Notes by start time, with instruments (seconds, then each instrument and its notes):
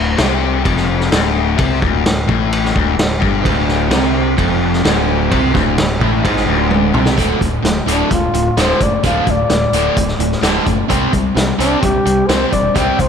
Already playing: picked electric bass D1, distorted electric guitar D2
0.17 picked electric bass C2, distorted electric guitar C3, snare, ride bell
0.64 picked electric bass F1, distorted electric guitar F2, kick, ride bell
0.77 snare
1.01 snare
1.11 picked electric bass D1, distorted electric guitar D2, snare, ride bell
1.58 picked electric bass C2, distorted electric guitar C3, kick, ride bell
1.81 picked electric bass D1, distorted electric guitar D2, kick
2.06 picked electric bass D1, distorted electric guitar D2, snare, ride bell
2.28 picked electric bass A1, distorted electric guitar A2, kick
2.53 ride bell
2.65 snare
2.75 picked electric bass D1, distorted electric guitar D2, kick
2.97 picked electric bass D1, distorted electric guitar D2, snare, ride bell
3.20 picked electric bass G1, distorted electric guitar G2, kick
3.44 picked electric bass D1, distorted electric guitar D2, kick, ride bell
3.68 snare
3.90 picked electric bass C2, distorted electric guitar C3, snare, ride bell
4.37 picked electric bass F1, distorted electric guitar F2, kick, ride bell
4.73 snare
4.84 picked electric bass D1, distorted electric guitar D2, snare, ride bell
5.32 picked electric bass C2, distorted electric guitar C3, kick, ride bell
5.54 picked electric bass D1, distorted electric guitar D2, kick, snare
5.78 picked electric bass D1, distorted electric guitar D2, snare, ride bell
6.01 picked electric bass A1, distorted electric guitar A2, kick
6.25 picked electric bass G#1, distorted electric guitar G#2, kick, ride bell
6.37 snare
6.48 picked electric bass D1, distorted electric guitar D2
6.71 high tom
6.93 picked electric bass C2, distorted electric guitar C3, mid tom
7.06 snare
7.17 picked electric bass D1, distorted electric guitar D2 A2 D3, kick, closed hi-hat
7.40 picked electric bass D1, distorted electric guitar D2 A2, kick, closed hi-hat
7.62 picked electric bass D1, distorted electric guitar D2 A2, snare, closed hi-hat
7.86 picked electric bass D1, distorted electric guitar D2 A2 D3, flugelhorn D4, closed hi-hat
8.10 picked electric bass D1, distorted electric guitar D2 A2, flugelhorn F4, kick, closed hi-hat
8.33 picked electric bass D1, distorted electric guitar D2 A2, closed hi-hat
8.57 picked electric bass D1, distorted electric guitar D2 A2 D3, flugelhorn C5, snare, closed hi-hat
8.81 picked electric bass F#1, distorted electric guitar D2 A2, flugelhorn D5, kick, closed hi-hat
9.03 picked electric bass D1, distorted electric guitar D2 A2 D3, flugelhorn F5, kick, closed hi-hat
9.27 picked electric bass D1, distorted electric guitar D2 A2, flugelhorn D5, kick, closed hi-hat
9.50 picked electric bass D1, distorted electric guitar D2 A2, snare, closed hi-hat
9.72 picked electric bass D1, distorted electric guitar D2 A2 D3, closed hi-hat
9.97 picked electric bass D1, distorted electric guitar D2 A2, kick, closed hi-hat
10.08 snare
10.19 picked electric bass D1, distorted electric guitar D2 A2, closed hi-hat
10.32 snare
10.41 picked electric bass D1, distorted electric guitar D2 A2 D3, snare, closed hi-hat
10.65 picked electric bass F#1, distorted electric guitar D2 A2, kick, closed hi-hat
10.89 picked electric bass C2, distorted electric guitar C3 G3 C4, kick, closed hi-hat
11.13 picked electric bass C2, distorted electric guitar C3 G3, kick, closed hi-hat
11.36 picked electric bass C2, distorted electric guitar C3 G3, snare, closed hi-hat
11.59 picked electric bass C2, distorted electric guitar C3 G3 C4, flugelhorn D4, closed hi-hat
11.82 picked electric bass C2, distorted electric guitar C3 G3, flugelhorn G4, kick, closed hi-hat
12.05 picked electric bass C2, distorted electric guitar C3 G3, closed hi-hat
12.27 picked electric bass C2, distorted electric guitar C3 G3, flugelhorn C5, snare, closed hi-hat
12.31 distorted electric guitar C4
12.52 picked electric bass E1, distorted electric guitar C3 G3, flugelhorn D5, kick, closed hi-hat
12.75 picked electric bass C2, distorted electric guitar C3 G3 C4, flugelhorn G5, kick, closed hi-hat
12.99 picked electric bass C2, distorted electric guitar C3 G3, flugelhorn C5, kick, closed hi-hat